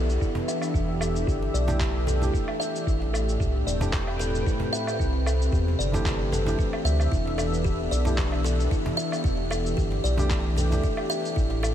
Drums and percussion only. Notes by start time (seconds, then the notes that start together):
0.10 cabasa
0.21 kick, cabasa
0.35 cajon bass
0.48 cabasa
0.62 cabasa, low woodblock
0.74 kick, cabasa
1.01 cabasa, low woodblock
1.15 cajon slap, cabasa
1.27 kick, cabasa
1.43 cajon slap
1.55 cabasa
1.68 cajon bass, cajon slap, cabasa
1.80 kick, clap, cabasa
2.07 cajon bass, cabasa
2.22 cajon bass, cabasa
2.34 kick, cabasa
2.48 low woodblock
2.61 cabasa
2.76 cabasa
2.87 kick, cabasa
3.02 cajon slap
3.14 cabasa, low woodblock
3.29 cabasa
3.40 kick, cabasa
3.68 cabasa
3.81 cajon bass, cajon slap, cabasa
3.93 kick, clap, cabasa
4.07 low woodblock
4.19 cajon slap, cabasa
4.35 cabasa
4.46 kick, cabasa
4.60 cajon bass
4.74 cabasa
4.87 cabasa, low woodblock
5.00 kick, cabasa
5.26 cabasa, low woodblock
5.40 cajon slap, cabasa
5.53 kick, cabasa
5.68 cajon slap
5.80 cabasa
5.93 cajon bass, cajon slap, cabasa
6.06 kick, clap, cabasa
6.32 cajon bass, cabasa
6.47 cajon bass, cabasa
6.59 kick, cabasa
6.73 low woodblock
6.86 cabasa
7.00 cabasa, low woodblock
7.12 kick, cabasa
7.27 cajon slap
7.38 cabasa, low woodblock
7.53 cabasa
7.65 kick, cabasa
7.92 cabasa
8.05 cajon bass, cajon slap, cabasa
8.18 kick, clap, cabasa
8.32 low woodblock
8.44 cajon slap, cabasa
8.60 cabasa
8.71 kick, cabasa
8.86 cajon bass
8.99 cabasa
9.12 cabasa, low woodblock
9.24 kick, cabasa
9.51 cabasa, low woodblock
9.65 cajon slap, cabasa
9.78 kick, cabasa
9.92 cajon slap
10.05 cabasa
10.18 cajon bass, cajon slap, cabasa
10.30 kick, clap, cabasa
10.56 cajon bass, cabasa
10.72 cajon bass, cabasa
10.83 kick, cabasa
10.97 low woodblock
11.11 cabasa
11.25 cabasa
11.36 kick, cabasa
11.51 cajon slap
11.63 cabasa, low woodblock